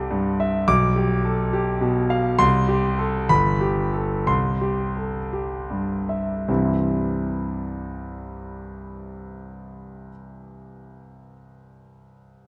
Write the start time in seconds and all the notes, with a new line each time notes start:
Already playing: C2 G4 A4 C6
0.11 G2
0.40 E5
0.68 B1 D6
0.96 G4
1.25 A4
1.53 G4
1.81 B2
2.10 F5
2.39 C2 C6
2.69 G4
2.99 A4
3.29 G1 B5
3.61 G4
3.93 A4
4.27 C2 C6
4.61 G4
4.97 A4
5.33 G4
5.70 G2
6.09 E5
6.48 C2 G2 E3 G3 C4 E4